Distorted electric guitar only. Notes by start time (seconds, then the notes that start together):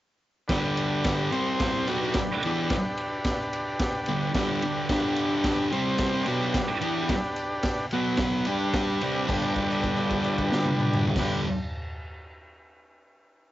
0.50 G2 D3 G3
1.32 C3 G3 C4
1.88 B2 F#3 B3
2.17 muted distorted electric guitar stroke
2.45 E3 B3 E4
2.73 muted distorted electric guitar stroke
4.08 G2 D3
4.35 G2 D3 G3
4.63 G2 D3
4.89 G2 D3 G3
5.72 C3 G3 C4
6.27 B2 F#3 B3
6.56 muted distorted electric guitar stroke
6.81 E3 B3 E4
7.11 muted distorted electric guitar stroke
7.93 B2 F#3 B3
8.47 G3 D4 G4
9.02 C3 G3 C4
9.27 G2 D3
9.32 G3
11.17 G2 D3 G3